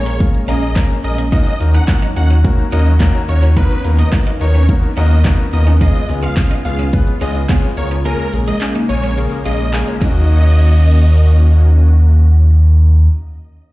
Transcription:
Already playing: A#1 G#3 A#3 C#4 F4 G#4 A#4 C#5
0.06 A#3, closed hi-hat, shaker
0.20 A#3 C#4 F4 G#4 A#4, kick, closed hi-hat, shaker
0.34 closed hi-hat, shaker
0.48 A#1 A#3 C#4 F4 G#4 A#4 D#5, open hi-hat, shaker
0.62 closed hi-hat, shaker
0.76 A#3 C#4 F4 G#4 A#4, kick, clap, closed hi-hat, shaker
0.90 closed hi-hat, shaker
1.04 A#1 A#3 C#4 F4 G#4 A#4 D#5, muted clean electric guitar stroke, open hi-hat, shaker
1.18 A#3, closed hi-hat, shaker
1.32 D#3 A#3 C#4 D#4 F#4 A#4 D#5, kick, closed hi-hat, shaker
1.46 closed hi-hat, shaker
1.60 D#2 A#3 C#4 D#4 F#4 A#4, muted clean electric guitar stroke, open hi-hat, shaker
1.74 C#4 D#4 F#5, closed hi-hat, shaker
1.88 A#3 C#4 D#4 F#4 A#4, kick, clap, closed hi-hat, shaker
2.02 F#3 D#4, closed hi-hat, shaker
2.16 D#2 A#3 C#4 D#4 F#4 C#5 D#5 F#5, muted clean electric guitar stroke, open hi-hat, shaker
2.30 C#4, closed hi-hat, shaker
2.44 A#3 C#4 D#4 F#4 A#4, kick, closed hi-hat, shaker
2.59 D#4, closed hi-hat, shaker
2.72 D#2 A#3 C#4 D#4 F#4 A#4 D#5, open hi-hat, shaker
2.86 F#3, closed hi-hat, shaker
3.00 A#3 C#4 D#4 F#4 A#4 D#5, kick, clap, closed hi-hat, shaker
3.14 C#5, closed hi-hat, shaker
3.28 D#2 A#3 C#4 D#4 F#4 A#4 C#5, muted clean electric guitar stroke, open hi-hat, shaker
3.43 C#4 D#4, closed hi-hat, shaker
3.57 A#3 B3 D#4 F#4 A#4 B4 D#5, kick, closed hi-hat, shaker
3.71 closed hi-hat, shaker
3.85 D#2 A#3 B3 D#4 F#4 A#4, muted clean electric guitar stroke, open hi-hat, shaker
3.99 A#3 D#4 D#5, closed hi-hat, shaker
4.12 A#3 B3 D#4 F#4 B4, kick, clap, closed hi-hat, shaker
4.27 A#3 D#4, closed hi-hat, shaker
4.41 D#2 A#3 B3 D#4 F#4 A#4 C#5 D#5, muted clean electric guitar stroke, open hi-hat, shaker
4.55 C#4, closed hi-hat, shaker
4.69 A#3 B3 D#4 F#4 A#4, kick, closed hi-hat, shaker
4.83 D#4, closed hi-hat, shaker
4.97 D#2 A#3 B3 C#4 D#4 F#4 A#4 D#5, open hi-hat, shaker
5.11 A#3, closed hi-hat, shaker
5.25 A#3 B3 D#4 F#4 A#4 D#5, kick, clap, closed hi-hat, shaker
5.39 B4, closed hi-hat, shaker
5.53 D#2 A#3 B3 D#4 F#4 A#4 D#5, muted clean electric guitar stroke, open hi-hat, shaker
5.67 C#4 D#4, closed hi-hat, shaker
5.81 C#3 G#3 B3 C#4 F4 G#4 D#5 F5, kick, closed hi-hat, shaker
5.95 closed hi-hat, shaker
6.09 C#2 G#3 B3 C#4 F4 G#4, muted clean electric guitar stroke, open hi-hat, shaker
6.23 B3 F4 F5, closed hi-hat, shaker
6.37 G#3 B3 C#4 F4 G#4, kick, clap, closed hi-hat, shaker
6.51 B3 D#4, closed hi-hat, shaker
6.65 C#2 G#3 B3 C#4 F4 G#4 F5, muted clean electric guitar stroke, open hi-hat, shaker
6.79 C#4, closed hi-hat, shaker
6.93 G#3 B3 C#4 F4 B4, kick, closed hi-hat, shaker
7.07 F4, closed hi-hat, shaker
7.21 C#2 G#3 B3 C#4 F4 G#4 D#5, open hi-hat, shaker
7.35 B3, closed hi-hat, shaker
7.49 G#3 B3 C#4 F4 G#4 F5, kick, clap, closed hi-hat, shaker
7.63 C#5, closed hi-hat, shaker
7.77 C#2 G#3 B3 C#4 F4 A#4 C#5, muted clean electric guitar stroke, open hi-hat, shaker
7.91 C#4 F4, closed hi-hat, shaker
8.05 G#3 A#3 C#4 F4 G#4 A#4 G#5, closed hi-hat, shaker
8.19 closed hi-hat, shaker
8.33 A#1 G#3 A#3 C#4 F4 G#4, muted clean electric guitar stroke, open hi-hat, shaker
8.47 G#3 G#4 D#5, closed hi-hat, shaker
8.61 G#3 A#3 C#4 F4 G#4, clap, closed hi-hat, shaker
8.75 A#3 D#4, closed hi-hat, shaker
8.89 A#1 G#3 A#3 C#4 F4 G#4 C#5 G#5, muted clean electric guitar stroke, open hi-hat, shaker
9.03 C#4, closed hi-hat, shaker
9.17 G#3 A#3 C#4 F4 G#4 A#4, closed hi-hat, shaker
9.31 G#4, closed hi-hat, shaker
9.45 A#1 G#3 A#3 C#4 F4 G#4 D#5, open hi-hat, shaker
9.59 A#3, closed hi-hat, shaker
9.73 G#3 A#3 C#4 F4 G#4 G#5, clap, closed hi-hat, shaker
9.87 C#5, closed hi-hat, shaker
9.96 C#4
10.00 D#2 D#3 A#3 C#4 D#4 F#4 D#5, kick, clap, crash
10.07 F#4

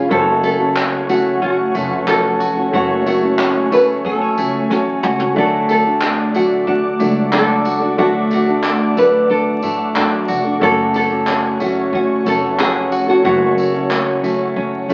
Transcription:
Already playing: F3 G#3 C#4 F4 G#4
0.09 F#1 F#3 A3 C#4 F#4 A4 C#5 F#5 C#6, kick
0.13 C5
0.19 C#5
0.43 A3 A4, tambourine
0.60 C#4 F#4 A4
0.76 C#4, clap
1.09 F#3 A3 C#4 F#4 A4, tambourine
1.42 C#4 F#4, kick
1.74 F1 F#3 A3 C#4 F#4 A4, tambourine
2.07 F#3 C#4 F#4 A4, clap
2.40 F#4, tambourine
2.57 C#4 F#4 A4
2.71 F#1 F#3 A3 C#4 F#4 A4 C#5 G#5, kick
3.06 A3 F#4, tambourine
3.22 C#4 F#4 A4
3.39 C#4, clap
3.71 F#3 A3 C#4 F#4 A4 B4, tambourine
4.05 B3 A4, kick
4.21 C#4
4.37 C#2 F#3 A3 C#4 F#4 A4, tambourine
4.69 A1 F#3 A3 C#4 F#4 G#4 C#5, snare
4.73 A4
5.03 C#2 F#4, mid tom
5.19 C#4 F#4 A4, floor tom
5.34 D2 D3 F#3 A3 D4 F#4 D5 F#5 D6, kick
5.38 A4
5.69 A3 A4, tambourine
5.87 D4 F#4
6.01 D4 G#4, clap
6.34 F#3 A3 D4 F#4 A4, tambourine
6.67 D4 F#4, kick
7.00 C#2 F#3 A3 D4 F#4 A4, tambourine
7.32 F#3 D4 F#4 A4, clap
7.65 F#4, tambourine
7.81 D4 F#4 G#4 A4
7.97 D2 D3 F#3 A3 D4 F#4 A4, kick
8.01 D5
8.31 A3 F#4, tambourine
8.47 D4 F#4 A4
8.63 D4, clap
8.97 F#3 A3 D4 F#4 A4 B4, tambourine
9.30 D4 A4, kick
9.62 A2 F#3 A3 D4 F#4 A4, tambourine
9.95 F#2 F#3 D4 F#4 A4, clap
10.28 F1 F#4, tambourine
10.45 D4 F#4 A4
10.59 F#1 F#3 A3 C#4 F#4 A4 C#5 C#6, kick
10.94 A3 A4, tambourine
11.12 C#4 F#4
11.27 C#4 G#4, clap
11.60 F#3 A3 C#4 F#4 A4, tambourine
11.93 C#4 F#4, kick
12.25 F1 F#3 A3 C#4 F#4 A4, tambourine
12.58 F#3 C#4 F#4 G#4, clap
12.92 F#4, tambourine
13.07 C#4 F#4 A4
13.23 F#1 F#3 A3 C#4 F#4 A4, kick
13.27 C#5
13.58 A3, tambourine
13.73 C#4 F#4 A4
13.91 C#4, clap
14.22 F#3 A3 C#4 F#4 A4, tambourine
14.56 C#4, kick
14.88 C#2 F#3 A3 C#4 F#4, tambourine

